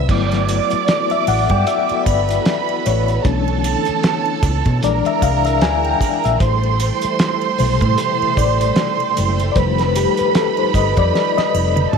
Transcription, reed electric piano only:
0, 0, Header, 1, 2, 480
1, 0, Start_track
1, 0, Tempo, 789474
1, 55, Time_signature, 4, 2, 24, 8
1, 7283, End_track
2, 0, Start_track
2, 0, Title_t, "Reed electric piano"
2, 0, Program_c, 0, 4
2, 0, Control_c, 0, 64, 127
2, 0, Note_on_c, 0, 54, 51
2, 0, Note_on_c, 0, 59, 41
2, 0, Note_on_c, 0, 60, 49
2, 0, Note_on_c, 0, 64, 54
2, 0, Note_on_c, 0, 71, 74
2, 0, Note_on_c, 0, 72, 84
2, 0, Note_on_c, 0, 74, 90
2, 0, Note_on_c, 0, 76, 85
2, 0, Note_on_c, 0, 78, 98
2, 51, Note_off_c, 0, 54, 0
2, 51, Note_on_c, 0, 54, 48
2, 56, Note_on_c, 0, 57, 45
2, 58, Note_off_c, 0, 59, 0
2, 58, Note_on_c, 0, 59, 43
2, 61, Note_off_c, 0, 64, 0
2, 61, Note_on_c, 0, 64, 53
2, 62, Control_c, 0, 64, 0
2, 63, Note_off_c, 0, 78, 0
2, 65, Note_off_c, 0, 72, 0
2, 67, Note_off_c, 0, 60, 0
2, 67, Note_off_c, 0, 76, 0
2, 68, Note_off_c, 0, 74, 0
2, 185, Control_c, 0, 64, 127
2, 272, Note_off_c, 0, 71, 0
2, 387, Note_off_c, 0, 54, 0
2, 389, Note_off_c, 0, 57, 0
2, 390, Note_off_c, 0, 59, 0
2, 392, Note_off_c, 0, 64, 0
2, 532, Note_on_c, 0, 74, 76
2, 677, Note_off_c, 0, 74, 0
2, 677, Note_on_c, 0, 76, 90
2, 779, Note_off_c, 0, 76, 0
2, 780, Note_on_c, 0, 78, 94
2, 918, Note_on_c, 0, 79, 96
2, 921, Note_off_c, 0, 78, 0
2, 1018, Note_on_c, 0, 76, 98
2, 1020, Note_off_c, 0, 79, 0
2, 1258, Note_on_c, 0, 74, 86
2, 1264, Note_off_c, 0, 76, 0
2, 1740, Note_on_c, 0, 73, 79
2, 1751, Note_off_c, 0, 74, 0
2, 1974, Note_on_c, 0, 52, 54
2, 1976, Note_on_c, 0, 57, 44
2, 1979, Note_on_c, 0, 61, 47
2, 1981, Note_on_c, 0, 62, 58
2, 1982, Control_c, 0, 64, 0
2, 2087, Control_c, 0, 64, 127
2, 2193, Note_off_c, 0, 73, 0
2, 2308, Note_off_c, 0, 52, 0
2, 2309, Note_off_c, 0, 57, 0
2, 2311, Note_off_c, 0, 61, 0
2, 2312, Note_off_c, 0, 62, 0
2, 2934, Note_on_c, 0, 52, 55
2, 2940, Note_on_c, 0, 56, 50
2, 2942, Note_on_c, 0, 62, 59
2, 2943, Control_c, 0, 64, 0
2, 2943, Note_on_c, 0, 74, 99
2, 3045, Control_c, 0, 64, 127
2, 3069, Note_off_c, 0, 74, 0
2, 3079, Note_on_c, 0, 76, 92
2, 3178, Note_on_c, 0, 77, 89
2, 3180, Note_off_c, 0, 76, 0
2, 3268, Note_off_c, 0, 52, 0
2, 3271, Note_off_c, 0, 56, 0
2, 3272, Note_off_c, 0, 62, 0
2, 3317, Note_on_c, 0, 76, 89
2, 3320, Note_off_c, 0, 77, 0
2, 3419, Note_off_c, 0, 76, 0
2, 3419, Note_on_c, 0, 80, 93
2, 3558, Note_on_c, 0, 79, 86
2, 3560, Note_off_c, 0, 80, 0
2, 3798, Note_on_c, 0, 76, 90
2, 3803, Note_off_c, 0, 79, 0
2, 3894, Note_on_c, 0, 72, 79
2, 3900, Note_off_c, 0, 76, 0
2, 3902, Control_c, 0, 64, 0
2, 4020, Control_c, 0, 64, 127
2, 4607, Note_off_c, 0, 72, 0
2, 4611, Note_on_c, 0, 48, 53
2, 4614, Note_on_c, 0, 72, 74
2, 4615, Note_on_c, 0, 55, 55
2, 4620, Note_on_c, 0, 47, 62
2, 4837, Note_off_c, 0, 72, 0
2, 5092, Note_on_c, 0, 74, 79
2, 5780, Note_off_c, 0, 74, 0
2, 5788, Note_off_c, 0, 48, 0
2, 5788, Note_on_c, 0, 74, 73
2, 5789, Note_off_c, 0, 55, 0
2, 5792, Note_off_c, 0, 47, 0
2, 5810, Note_on_c, 0, 51, 49
2, 5813, Note_off_c, 0, 74, 0
2, 5814, Note_on_c, 0, 72, 96
2, 5815, Note_on_c, 0, 55, 53
2, 5819, Note_on_c, 0, 57, 57
2, 5822, Control_c, 0, 64, 0
2, 5914, Control_c, 0, 64, 127
2, 5953, Note_on_c, 0, 71, 86
2, 5957, Note_off_c, 0, 72, 0
2, 6056, Note_off_c, 0, 71, 0
2, 6057, Note_on_c, 0, 67, 83
2, 6195, Note_on_c, 0, 71, 98
2, 6198, Note_off_c, 0, 67, 0
2, 6297, Note_off_c, 0, 71, 0
2, 6299, Note_on_c, 0, 69, 93
2, 6435, Note_on_c, 0, 72, 86
2, 6439, Note_off_c, 0, 69, 0
2, 6537, Note_on_c, 0, 75, 98
2, 6538, Note_off_c, 0, 72, 0
2, 6678, Note_off_c, 0, 75, 0
2, 6678, Note_on_c, 0, 74, 107
2, 6785, Note_off_c, 0, 74, 0
2, 6916, Note_on_c, 0, 75, 99
2, 7283, Note_off_c, 0, 51, 0
2, 7283, Note_off_c, 0, 55, 0
2, 7283, Note_off_c, 0, 57, 0
2, 7283, Note_off_c, 0, 75, 0
2, 7283, End_track
0, 0, End_of_file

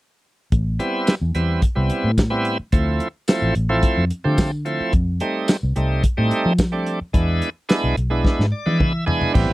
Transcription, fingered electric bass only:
0, 0, Header, 1, 3, 480
1, 0, Start_track
1, 0, Key_signature, 0, "minor"
1, 0, Tempo, 552181
1, 451, Time_signature, 4, 2, 24, 8
1, 8285, End_track
2, 0, Start_track
2, 0, Title_t, "Fingered electric bass"
2, 0, Program_c, 0, 33
2, 453, Note_on_c, 0, 33, 78
2, 678, Note_off_c, 0, 33, 0
2, 1056, Note_on_c, 0, 40, 72
2, 1166, Note_off_c, 0, 40, 0
2, 1175, Note_on_c, 0, 40, 70
2, 1399, Note_off_c, 0, 40, 0
2, 1538, Note_on_c, 0, 36, 70
2, 1647, Note_off_c, 0, 36, 0
2, 1774, Note_on_c, 0, 45, 68
2, 2226, Note_off_c, 0, 45, 0
2, 2371, Note_on_c, 0, 38, 83
2, 2597, Note_off_c, 0, 38, 0
2, 2973, Note_on_c, 0, 33, 73
2, 3084, Note_off_c, 0, 33, 0
2, 3094, Note_on_c, 0, 33, 74
2, 3319, Note_off_c, 0, 33, 0
2, 3455, Note_on_c, 0, 41, 69
2, 3565, Note_off_c, 0, 41, 0
2, 3699, Note_on_c, 0, 50, 71
2, 4149, Note_off_c, 0, 50, 0
2, 4290, Note_on_c, 0, 41, 75
2, 4517, Note_off_c, 0, 41, 0
2, 4896, Note_on_c, 0, 36, 72
2, 5005, Note_off_c, 0, 36, 0
2, 5013, Note_on_c, 0, 36, 74
2, 5238, Note_off_c, 0, 36, 0
2, 5375, Note_on_c, 0, 45, 72
2, 5485, Note_off_c, 0, 45, 0
2, 5612, Note_on_c, 0, 53, 70
2, 6065, Note_off_c, 0, 53, 0
2, 6209, Note_on_c, 0, 40, 85
2, 6436, Note_off_c, 0, 40, 0
2, 6813, Note_on_c, 0, 35, 72
2, 6924, Note_off_c, 0, 35, 0
2, 6931, Note_on_c, 0, 35, 76
2, 7157, Note_off_c, 0, 35, 0
2, 7294, Note_on_c, 0, 44, 74
2, 7405, Note_off_c, 0, 44, 0
2, 7532, Note_on_c, 0, 52, 66
2, 7985, Note_off_c, 0, 52, 0
2, 8129, Note_on_c, 0, 33, 98
2, 8246, Note_off_c, 0, 33, 0
2, 8256, Note_on_c, 0, 33, 73
2, 8285, Note_off_c, 0, 33, 0
2, 8285, End_track
3, 0, Start_track
3, 0, Title_t, "Muted fingered electric bass strokes"
3, 2256, Note_on_c, 9, 29, 28
3, 2343, Note_off_c, 9, 29, 0
3, 4177, Note_on_c, 9, 29, 29
3, 4264, Note_off_c, 9, 29, 0
3, 6095, Note_on_c, 9, 29, 30
3, 6182, Note_off_c, 9, 29, 0
3, 8015, Note_on_c, 9, 29, 28
3, 8102, Note_off_c, 9, 29, 0
3, 8285, End_track
0, 0, End_of_file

